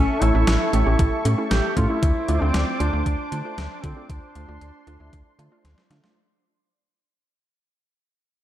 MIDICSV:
0, 0, Header, 1, 6, 480
1, 0, Start_track
1, 0, Tempo, 517241
1, 1881, Time_signature, 4, 2, 24, 8
1, 7831, End_track
2, 0, Start_track
2, 0, Title_t, "Analog synth pad"
2, 0, Program_c, 0, 89
2, 0, Note_on_c, 0, 69, 76
2, 0, Note_on_c, 0, 76, 70
2, 0, Note_on_c, 0, 85, 83
2, 1845, Note_off_c, 0, 85, 0
2, 1846, Note_off_c, 0, 69, 0
2, 1846, Note_off_c, 0, 76, 0
2, 1882, Note_on_c, 0, 74, 67
2, 1882, Note_on_c, 0, 86, 84
2, 1883, Note_on_c, 0, 72, 75
2, 3783, Note_off_c, 0, 86, 0
2, 3803, Note_on_c, 0, 84, 83
2, 5685, Note_off_c, 0, 72, 0
2, 5685, Note_off_c, 0, 74, 0
2, 5703, Note_off_c, 0, 84, 0
2, 7831, End_track
3, 0, Start_track
3, 0, Title_t, "Duduk"
3, 0, Program_c, 1, 69
3, 0, Note_on_c, 1, 61, 92
3, 202, Note_on_c, 1, 64, 95
3, 216, Note_off_c, 1, 61, 0
3, 677, Note_off_c, 1, 64, 0
3, 682, Note_on_c, 1, 64, 85
3, 1128, Note_off_c, 1, 64, 0
3, 1401, Note_on_c, 1, 67, 101
3, 1625, Note_off_c, 1, 67, 0
3, 1643, Note_on_c, 1, 65, 95
3, 1764, Note_on_c, 1, 64, 99
3, 1778, Note_off_c, 1, 65, 0
3, 2243, Note_on_c, 1, 60, 90
3, 2257, Note_off_c, 1, 64, 0
3, 2603, Note_on_c, 1, 62, 100
3, 2617, Note_off_c, 1, 60, 0
3, 3560, Note_on_c, 1, 60, 82
3, 3574, Note_off_c, 1, 62, 0
3, 3795, Note_off_c, 1, 60, 0
3, 3801, Note_on_c, 1, 62, 96
3, 5204, Note_off_c, 1, 62, 0
3, 7831, End_track
4, 0, Start_track
4, 0, Title_t, "Synth pluck"
4, 0, Program_c, 2, 84
4, 202, Note_on_c, 2, 57, 75
4, 202, Note_on_c, 2, 64, 81
4, 203, Note_on_c, 2, 61, 66
4, 303, Note_off_c, 2, 57, 0
4, 303, Note_off_c, 2, 64, 0
4, 304, Note_off_c, 2, 61, 0
4, 323, Note_on_c, 2, 57, 69
4, 323, Note_on_c, 2, 61, 63
4, 323, Note_on_c, 2, 64, 77
4, 525, Note_off_c, 2, 57, 0
4, 525, Note_off_c, 2, 61, 0
4, 525, Note_off_c, 2, 64, 0
4, 682, Note_on_c, 2, 57, 80
4, 682, Note_on_c, 2, 61, 71
4, 683, Note_on_c, 2, 67, 86
4, 783, Note_off_c, 2, 57, 0
4, 783, Note_off_c, 2, 61, 0
4, 784, Note_off_c, 2, 67, 0
4, 802, Note_on_c, 2, 57, 70
4, 802, Note_on_c, 2, 61, 65
4, 802, Note_on_c, 2, 67, 79
4, 1005, Note_off_c, 2, 57, 0
4, 1005, Note_off_c, 2, 61, 0
4, 1005, Note_off_c, 2, 67, 0
4, 1161, Note_on_c, 2, 57, 75
4, 1161, Note_on_c, 2, 61, 67
4, 1161, Note_on_c, 2, 67, 79
4, 1263, Note_off_c, 2, 57, 0
4, 1263, Note_off_c, 2, 61, 0
4, 1263, Note_off_c, 2, 67, 0
4, 1281, Note_on_c, 2, 57, 65
4, 1281, Note_on_c, 2, 61, 64
4, 1281, Note_on_c, 2, 64, 75
4, 1484, Note_off_c, 2, 57, 0
4, 1484, Note_off_c, 2, 61, 0
4, 1484, Note_off_c, 2, 64, 0
4, 1642, Note_on_c, 2, 57, 80
4, 1642, Note_on_c, 2, 61, 68
4, 1642, Note_on_c, 2, 64, 85
4, 1743, Note_off_c, 2, 57, 0
4, 1743, Note_off_c, 2, 61, 0
4, 1743, Note_off_c, 2, 64, 0
4, 1761, Note_on_c, 2, 57, 68
4, 1761, Note_on_c, 2, 61, 61
4, 1761, Note_on_c, 2, 64, 74
4, 1881, Note_off_c, 2, 57, 0
4, 1881, Note_off_c, 2, 61, 0
4, 1881, Note_off_c, 2, 64, 0
4, 2120, Note_on_c, 2, 57, 75
4, 2121, Note_on_c, 2, 62, 68
4, 2121, Note_on_c, 2, 65, 83
4, 2222, Note_off_c, 2, 57, 0
4, 2223, Note_off_c, 2, 62, 0
4, 2223, Note_off_c, 2, 65, 0
4, 2240, Note_on_c, 2, 57, 68
4, 2241, Note_on_c, 2, 62, 63
4, 2241, Note_on_c, 2, 65, 77
4, 2444, Note_off_c, 2, 57, 0
4, 2444, Note_off_c, 2, 62, 0
4, 2444, Note_off_c, 2, 65, 0
4, 2600, Note_on_c, 2, 57, 77
4, 2600, Note_on_c, 2, 62, 69
4, 2600, Note_on_c, 2, 65, 85
4, 2702, Note_off_c, 2, 57, 0
4, 2702, Note_off_c, 2, 62, 0
4, 2702, Note_off_c, 2, 65, 0
4, 2721, Note_on_c, 2, 57, 68
4, 2721, Note_on_c, 2, 65, 76
4, 2722, Note_on_c, 2, 62, 64
4, 2924, Note_off_c, 2, 65, 0
4, 2925, Note_off_c, 2, 57, 0
4, 2925, Note_off_c, 2, 62, 0
4, 3081, Note_on_c, 2, 57, 74
4, 3082, Note_on_c, 2, 62, 66
4, 3082, Note_on_c, 2, 65, 83
4, 3183, Note_off_c, 2, 57, 0
4, 3183, Note_off_c, 2, 62, 0
4, 3183, Note_off_c, 2, 65, 0
4, 3202, Note_on_c, 2, 57, 78
4, 3202, Note_on_c, 2, 62, 73
4, 3202, Note_on_c, 2, 65, 91
4, 3405, Note_off_c, 2, 57, 0
4, 3405, Note_off_c, 2, 62, 0
4, 3405, Note_off_c, 2, 65, 0
4, 3561, Note_on_c, 2, 62, 71
4, 3562, Note_on_c, 2, 57, 74
4, 3562, Note_on_c, 2, 65, 86
4, 3663, Note_off_c, 2, 57, 0
4, 3663, Note_off_c, 2, 62, 0
4, 3663, Note_off_c, 2, 65, 0
4, 3682, Note_on_c, 2, 57, 65
4, 3682, Note_on_c, 2, 62, 59
4, 3682, Note_on_c, 2, 65, 74
4, 3885, Note_off_c, 2, 57, 0
4, 3885, Note_off_c, 2, 62, 0
4, 3885, Note_off_c, 2, 65, 0
4, 4041, Note_on_c, 2, 62, 67
4, 4041, Note_on_c, 2, 65, 80
4, 4042, Note_on_c, 2, 57, 73
4, 4143, Note_off_c, 2, 57, 0
4, 4143, Note_off_c, 2, 62, 0
4, 4143, Note_off_c, 2, 65, 0
4, 4161, Note_on_c, 2, 62, 61
4, 4161, Note_on_c, 2, 65, 78
4, 4162, Note_on_c, 2, 57, 71
4, 4364, Note_off_c, 2, 57, 0
4, 4364, Note_off_c, 2, 62, 0
4, 4364, Note_off_c, 2, 65, 0
4, 4520, Note_on_c, 2, 65, 102
4, 4521, Note_on_c, 2, 57, 92
4, 4521, Note_on_c, 2, 62, 81
4, 4622, Note_off_c, 2, 65, 0
4, 4623, Note_off_c, 2, 57, 0
4, 4623, Note_off_c, 2, 62, 0
4, 4640, Note_on_c, 2, 57, 82
4, 4640, Note_on_c, 2, 62, 74
4, 4641, Note_on_c, 2, 64, 87
4, 4844, Note_off_c, 2, 57, 0
4, 4844, Note_off_c, 2, 62, 0
4, 4844, Note_off_c, 2, 64, 0
4, 5001, Note_on_c, 2, 65, 94
4, 5002, Note_on_c, 2, 57, 89
4, 5002, Note_on_c, 2, 62, 81
4, 5103, Note_off_c, 2, 57, 0
4, 5103, Note_off_c, 2, 62, 0
4, 5103, Note_off_c, 2, 65, 0
4, 5121, Note_on_c, 2, 57, 79
4, 5121, Note_on_c, 2, 62, 73
4, 5121, Note_on_c, 2, 65, 90
4, 5324, Note_off_c, 2, 57, 0
4, 5324, Note_off_c, 2, 62, 0
4, 5324, Note_off_c, 2, 65, 0
4, 5481, Note_on_c, 2, 57, 89
4, 5482, Note_on_c, 2, 62, 82
4, 5482, Note_on_c, 2, 65, 101
4, 5583, Note_off_c, 2, 57, 0
4, 5583, Note_off_c, 2, 62, 0
4, 5583, Note_off_c, 2, 65, 0
4, 5601, Note_on_c, 2, 57, 77
4, 5601, Note_on_c, 2, 62, 73
4, 5601, Note_on_c, 2, 65, 86
4, 5721, Note_off_c, 2, 57, 0
4, 5721, Note_off_c, 2, 62, 0
4, 5721, Note_off_c, 2, 65, 0
4, 7831, End_track
5, 0, Start_track
5, 0, Title_t, "FM bass"
5, 0, Program_c, 3, 39
5, 201, Note_on_c, 3, 33, 107
5, 294, Note_off_c, 3, 33, 0
5, 321, Note_on_c, 3, 33, 102
5, 414, Note_off_c, 3, 33, 0
5, 440, Note_on_c, 3, 33, 100
5, 534, Note_off_c, 3, 33, 0
5, 680, Note_on_c, 3, 33, 106
5, 774, Note_off_c, 3, 33, 0
5, 802, Note_on_c, 3, 33, 95
5, 894, Note_off_c, 3, 33, 0
5, 921, Note_on_c, 3, 33, 98
5, 1014, Note_off_c, 3, 33, 0
5, 1162, Note_on_c, 3, 45, 94
5, 1255, Note_off_c, 3, 45, 0
5, 1402, Note_on_c, 3, 33, 104
5, 1495, Note_off_c, 3, 33, 0
5, 1641, Note_on_c, 3, 45, 102
5, 1734, Note_off_c, 3, 45, 0
5, 1881, Note_on_c, 3, 38, 111
5, 1974, Note_off_c, 3, 38, 0
5, 2122, Note_on_c, 3, 38, 93
5, 2215, Note_off_c, 3, 38, 0
5, 2242, Note_on_c, 3, 38, 98
5, 2335, Note_off_c, 3, 38, 0
5, 2362, Note_on_c, 3, 38, 98
5, 2455, Note_off_c, 3, 38, 0
5, 2601, Note_on_c, 3, 38, 102
5, 2694, Note_off_c, 3, 38, 0
5, 2722, Note_on_c, 3, 38, 92
5, 2814, Note_off_c, 3, 38, 0
5, 2841, Note_on_c, 3, 38, 107
5, 2934, Note_off_c, 3, 38, 0
5, 3081, Note_on_c, 3, 50, 97
5, 3174, Note_off_c, 3, 50, 0
5, 3320, Note_on_c, 3, 38, 102
5, 3414, Note_off_c, 3, 38, 0
5, 3561, Note_on_c, 3, 50, 107
5, 3654, Note_off_c, 3, 50, 0
5, 3801, Note_on_c, 3, 38, 113
5, 3894, Note_off_c, 3, 38, 0
5, 4042, Note_on_c, 3, 38, 93
5, 4134, Note_off_c, 3, 38, 0
5, 4161, Note_on_c, 3, 38, 99
5, 4254, Note_off_c, 3, 38, 0
5, 4280, Note_on_c, 3, 38, 97
5, 4373, Note_off_c, 3, 38, 0
5, 4521, Note_on_c, 3, 38, 104
5, 4614, Note_off_c, 3, 38, 0
5, 4640, Note_on_c, 3, 38, 92
5, 4734, Note_off_c, 3, 38, 0
5, 4761, Note_on_c, 3, 38, 103
5, 4854, Note_off_c, 3, 38, 0
5, 4999, Note_on_c, 3, 50, 99
5, 5093, Note_off_c, 3, 50, 0
5, 5239, Note_on_c, 3, 38, 101
5, 5333, Note_off_c, 3, 38, 0
5, 5479, Note_on_c, 3, 50, 100
5, 5573, Note_off_c, 3, 50, 0
5, 7831, End_track
6, 0, Start_track
6, 0, Title_t, "Drums"
6, 201, Note_on_c, 9, 42, 67
6, 294, Note_off_c, 9, 42, 0
6, 440, Note_on_c, 9, 38, 113
6, 442, Note_on_c, 9, 42, 76
6, 532, Note_off_c, 9, 38, 0
6, 535, Note_off_c, 9, 42, 0
6, 681, Note_on_c, 9, 42, 65
6, 774, Note_off_c, 9, 42, 0
6, 921, Note_on_c, 9, 36, 91
6, 922, Note_on_c, 9, 42, 63
6, 1014, Note_off_c, 9, 36, 0
6, 1015, Note_off_c, 9, 42, 0
6, 1162, Note_on_c, 9, 42, 78
6, 1255, Note_off_c, 9, 42, 0
6, 1401, Note_on_c, 9, 42, 69
6, 1403, Note_on_c, 9, 38, 97
6, 1494, Note_off_c, 9, 42, 0
6, 1496, Note_off_c, 9, 38, 0
6, 1640, Note_on_c, 9, 42, 70
6, 1641, Note_on_c, 9, 36, 91
6, 1733, Note_off_c, 9, 36, 0
6, 1733, Note_off_c, 9, 42, 0
6, 1881, Note_on_c, 9, 36, 119
6, 1882, Note_on_c, 9, 42, 85
6, 1974, Note_off_c, 9, 36, 0
6, 1975, Note_off_c, 9, 42, 0
6, 2120, Note_on_c, 9, 42, 68
6, 2213, Note_off_c, 9, 42, 0
6, 2359, Note_on_c, 9, 38, 110
6, 2361, Note_on_c, 9, 42, 73
6, 2452, Note_off_c, 9, 38, 0
6, 2454, Note_off_c, 9, 42, 0
6, 2601, Note_on_c, 9, 42, 67
6, 2693, Note_off_c, 9, 42, 0
6, 2841, Note_on_c, 9, 36, 92
6, 2842, Note_on_c, 9, 42, 65
6, 2934, Note_off_c, 9, 36, 0
6, 2935, Note_off_c, 9, 42, 0
6, 3082, Note_on_c, 9, 42, 77
6, 3175, Note_off_c, 9, 42, 0
6, 3321, Note_on_c, 9, 42, 66
6, 3323, Note_on_c, 9, 38, 101
6, 3414, Note_off_c, 9, 42, 0
6, 3416, Note_off_c, 9, 38, 0
6, 3560, Note_on_c, 9, 42, 67
6, 3561, Note_on_c, 9, 36, 87
6, 3653, Note_off_c, 9, 36, 0
6, 3653, Note_off_c, 9, 42, 0
6, 3801, Note_on_c, 9, 36, 115
6, 3802, Note_on_c, 9, 42, 84
6, 3894, Note_off_c, 9, 36, 0
6, 3894, Note_off_c, 9, 42, 0
6, 4040, Note_on_c, 9, 42, 64
6, 4133, Note_off_c, 9, 42, 0
6, 4282, Note_on_c, 9, 42, 72
6, 4374, Note_off_c, 9, 42, 0
6, 4521, Note_on_c, 9, 42, 64
6, 4613, Note_off_c, 9, 42, 0
6, 4761, Note_on_c, 9, 36, 88
6, 4762, Note_on_c, 9, 42, 63
6, 4854, Note_off_c, 9, 36, 0
6, 4855, Note_off_c, 9, 42, 0
6, 5003, Note_on_c, 9, 42, 75
6, 5095, Note_off_c, 9, 42, 0
6, 5242, Note_on_c, 9, 38, 52
6, 5242, Note_on_c, 9, 42, 66
6, 5334, Note_off_c, 9, 42, 0
6, 5335, Note_off_c, 9, 38, 0
6, 5362, Note_on_c, 9, 38, 59
6, 5455, Note_off_c, 9, 38, 0
6, 5481, Note_on_c, 9, 42, 68
6, 5482, Note_on_c, 9, 38, 81
6, 5574, Note_off_c, 9, 42, 0
6, 5575, Note_off_c, 9, 38, 0
6, 5602, Note_on_c, 9, 38, 83
6, 5695, Note_off_c, 9, 38, 0
6, 7831, End_track
0, 0, End_of_file